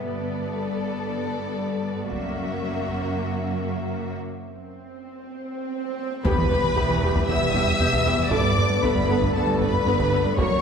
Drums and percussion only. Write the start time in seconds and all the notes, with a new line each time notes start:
2.10 taiko
2.88 taiko
6.25 taiko
6.51 taiko low
6.77 taiko
6.90 taiko low
7.16 taiko
7.54 taiko
7.67 taiko low
7.80 taiko low
7.93 taiko
8.19 taiko low
8.32 taiko
8.57 taiko low
8.83 taiko
8.96 taiko low
9.22 taiko
9.61 taiko
9.73 taiko low
9.87 taiko low
10.00 taiko
10.25 taiko low
10.38 taiko